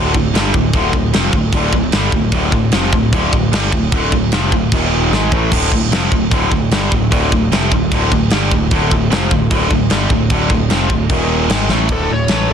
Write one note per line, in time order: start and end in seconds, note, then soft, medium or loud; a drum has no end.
0.00 0.13 D1 loud
0.00 0.12 D2 medium
0.00 0.13 A2 loud
0.00 0.14 D3 loud
0.14 0.33 D1 medium
0.14 0.30 D2 medium
0.14 0.30 A2 medium
0.14 kick medium
0.34 0.52 G1 loud
0.34 0.53 G2 loud
0.34 0.53 D3 loud
0.34 0.53 G3 loud
0.34 snare loud
0.34 crash medium
0.54 0.73 D1 medium
0.54 0.70 D2 medium
0.54 0.70 A2 medium
0.54 kick loud
0.73 0.92 D1 loud
0.73 0.93 D2 loud
0.73 0.93 A2 loud
0.73 0.94 D3 loud
0.73 kick loud
0.73 crash medium
0.93 1.12 D1 medium
0.93 1.10 D2 medium
0.93 1.10 A2 medium
0.93 kick medium
1.13 1.32 F1 loud
1.13 1.33 F2 loud
1.13 1.34 C3 loud
1.13 1.34 F3 loud
1.13 snare loud
1.13 crash medium
1.33 1.52 D1 medium
1.33 1.50 D2 medium
1.33 1.50 A2 medium
1.33 kick medium
1.52 1.71 D1 medium
1.52 1.72 D2 loud
1.52 1.73 A2 loud
1.52 1.74 D3 loud
1.52 kick loud
1.52 crash medium
1.73 1.92 D1 medium
1.73 1.89 D2 medium
1.73 1.90 A2 medium
1.73 kick medium
1.92 2.11 G1 loud
1.92 2.13 G2 loud
1.92 2.13 D3 loud
1.92 2.14 G3 loud
1.92 snare loud
1.92 crash medium
2.12 2.31 D1 medium
2.12 2.30 D2 medium
2.12 2.30 A2 medium
2.12 kick loud
2.32 2.51 D1 loud
2.32 2.52 D2 loud
2.32 2.53 A2 loud
2.32 2.54 D3 loud
2.32 kick loud
2.32 crash medium
2.52 2.71 D1 medium
2.52 2.69 D2 medium
2.52 2.70 A2 medium
2.52 kick medium
2.72 2.92 F1 loud
2.72 2.93 F2 loud
2.72 2.93 C3 loud
2.72 2.94 F3 loud
2.72 snare loud
2.72 crash medium
2.93 3.12 D1 medium
2.93 3.10 D2 medium
2.93 3.10 A2 medium
2.93 kick loud
3.13 3.32 D1 medium
3.13 3.32 D2 loud
3.13 3.33 A2 loud
3.13 3.34 D3 loud
3.13 kick loud
3.13 crash medium
3.33 3.51 D1 medium
3.33 3.49 D2 medium
3.33 3.49 A2 medium
3.33 kick loud
3.52 3.71 G1 loud
3.52 3.72 G2 loud
3.52 3.73 D3 loud
3.52 3.73 G3 loud
3.52 snare loud
3.52 crash medium
3.72 3.91 D1 medium
3.72 3.89 D2 medium
3.72 3.89 A2 medium
3.72 kick medium
3.92 4.11 D1 loud
3.92 4.12 D2 loud
3.92 4.12 A2 loud
3.92 4.13 D3 loud
3.92 kick loud
3.92 crash medium
4.12 4.31 D1 medium
4.12 4.29 D2 medium
4.12 4.29 A2 medium
4.12 kick medium
4.32 4.51 F1 loud
4.32 4.52 F2 loud
4.32 4.52 C3 loud
4.32 4.53 F3 loud
4.32 snare loud
4.32 crash medium
4.52 4.71 D1 medium
4.52 4.69 D2 medium
4.52 4.69 A2 medium
4.52 kick medium
4.72 5.09 D#1 medium
4.72 5.11 D#2 medium
4.72 5.12 A#2 loud
4.72 5.11 D#3 loud
4.72 kick loud
4.72 crash medium
5.11 5.31 G#1 loud
5.11 5.31 G#2 medium
5.11 5.32 D#3 loud
5.11 5.32 G#3 loud
5.11 snare medium
5.32 5.51 A1 medium
5.32 5.51 A2 medium
5.32 5.52 E3 loud
5.32 5.52 A3 loud
5.32 kick loud
5.52 5.71 D1 loud
5.52 5.71 D2 loud
5.52 5.71 A2 loud
5.52 5.72 D3 loud
5.52 kick loud
5.52 crash loud
5.72 5.91 D1 medium
5.72 5.88 D2 medium
5.72 5.88 A2 medium
5.72 kick medium
5.91 6.10 F1 loud
5.91 6.11 F2 medium
5.91 6.12 C3 medium
5.91 6.12 F3 loud
5.91 snare loud
5.91 crash medium
6.11 6.31 D1 medium
6.11 6.29 D2 medium
6.11 6.29 A2 medium
6.11 kick medium
6.31 6.50 D1 loud
6.31 6.50 D2 loud
6.31 6.50 A2 medium
6.31 6.51 D3 loud
6.31 kick loud
6.31 crash medium
6.51 6.70 D1 medium
6.51 6.68 D2 medium
6.51 6.68 A2 medium
6.51 kick loud
6.71 6.90 G1 loud
6.71 6.91 G2 loud
6.71 6.91 D3 loud
6.71 6.92 G3 loud
6.71 snare loud
6.71 crash medium
6.91 7.11 D1 medium
6.91 7.08 D2 medium
6.91 7.08 A2 medium
6.91 kick medium
7.11 7.31 D1 loud
7.11 7.30 D2 loud
7.11 7.31 A2 loud
7.11 7.32 D3 loud
7.11 kick loud
7.11 crash medium
7.31 7.51 D1 medium
7.31 7.48 D2 medium
7.31 7.48 A2 medium
7.31 kick loud
7.52 7.71 F1 loud
7.52 7.71 F2 loud
7.52 7.72 C3 medium
7.52 7.72 F3 loud
7.52 snare loud
7.52 crash medium
7.72 7.91 D1 medium
7.72 7.88 D2 medium
7.72 7.88 A2 medium
7.72 kick medium
7.91 8.10 D1 medium
7.91 8.11 D2 loud
7.91 8.12 A2 medium
7.91 8.12 D3 loud
7.91 kick loud
7.91 crash medium
8.12 8.31 D1 medium
8.12 8.29 D2 medium
8.12 8.29 A2 medium
8.12 kick loud
8.30 8.50 G1 loud
8.30 8.52 G2 loud
8.30 8.52 D3 loud
8.30 snare loud
8.30 crash medium
8.35 8.53 G3 loud
8.51 8.70 D1 medium
8.51 8.69 D2 medium
8.51 8.69 A2 medium
8.51 kick loud
8.71 8.90 D1 loud
8.71 8.92 D2 loud
8.71 8.92 A2 loud
8.71 8.93 D3 loud
8.71 kick loud
8.71 crash medium
8.91 9.10 D1 medium
8.91 9.08 D2 medium
8.91 9.08 A2 medium
8.91 kick loud
9.10 9.30 F1 loud
9.10 9.30 F2 loud
9.10 9.30 C3 loud
9.10 9.31 F3 loud
9.10 snare loud
9.10 crash medium
9.31 9.50 D1 medium
9.31 9.47 D2 medium
9.31 9.47 A2 medium
9.31 kick medium
9.51 9.70 D1 medium
9.51 9.69 D2 loud
9.51 9.69 A2 loud
9.51 9.71 D3 loud
9.51 kick loud
9.51 crash medium
9.70 9.90 D1 medium
9.70 9.87 D2 medium
9.70 9.87 A2 medium
9.70 kick medium
9.90 10.09 G1 loud
9.90 10.10 G2 medium
9.90 10.10 D3 loud
9.90 10.11 G3 loud
9.90 snare loud
9.90 crash medium
10.10 10.29 D1 medium
10.10 10.27 D2 medium
10.10 10.27 A2 medium
10.10 kick medium
10.30 10.49 D1 medium
10.30 10.50 D2 loud
10.30 10.51 A2 loud
10.30 10.51 D3 loud
10.30 kick loud
10.30 crash medium
10.50 10.69 D1 medium
10.50 10.67 D2 medium
10.50 10.67 A2 medium
10.50 kick loud
10.70 10.89 F1 loud
10.70 10.90 F2 medium
10.70 10.90 C3 loud
10.70 10.91 F3 loud
10.70 snare loud
10.70 crash medium
10.90 11.09 D1 medium
10.90 11.06 D2 medium
10.90 11.06 A2 medium
10.90 kick medium
11.09 11.47 D#1 medium
11.09 11.49 D#2 loud
11.09 11.50 A#2 loud
11.09 11.49 D#3 loud
11.09 kick loud
11.09 crash medium
11.49 11.69 G#1 loud
11.49 11.69 G#2 loud
11.49 11.70 D#3 loud
11.49 11.70 G#3 medium
11.49 snare loud
11.49 crash medium
11.69 11.88 A1 medium
11.69 11.89 A2 medium
11.69 11.90 E3 loud
11.69 11.90 A3 loud
11.69 snare medium
11.89 12.08 D1 loud
11.89 12.08 D2 loud
11.89 12.09 A2 loud
11.89 12.10 D3 loud
11.89 12.12 A4 medium
11.89 kick loud
11.89 ride bell medium
12.09 12.28 D1 medium
12.09 12.26 D2 medium
12.09 12.26 A2 medium
12.09 12.51 C#5 medium
12.28 12.48 A1 medium
12.28 12.48 A2 loud
12.28 12.49 E3 medium
12.28 12.49 A3 loud
12.28 snare loud
12.28 ride bell medium
12.49 12.53 D1 medium
12.49 12.53 D2 medium
12.49 12.53 A2 medium